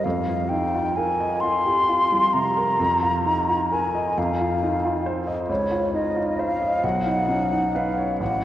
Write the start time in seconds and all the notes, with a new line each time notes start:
0.04 F2 F5
0.28 F4
0.49 D#4 G5
0.74 F4
0.96 A#4 G#5
1.20 D#5
1.41 F4 C6
1.66 G4
1.89 F4
2.12 G3
2.33 C3 A#5
2.57 A#4
2.80 F2
3.02 F4
3.26 D#4
3.49 F4
3.72 A#4 G#5
3.95 D#5
4.18 F2 F5
4.41 F4
4.63 D#4
4.85 F4
5.06 C5
5.27 D#5
5.49 C#2 C#5
5.72 F4
5.94 D#4 D#5
6.16 F4
6.39 C5 F5
6.61 D#5
6.83 B1 F#5
7.06 D#4
7.28 C#4
7.51 D#4
7.74 B4 F5
7.97 C#5
8.20 A1 F#5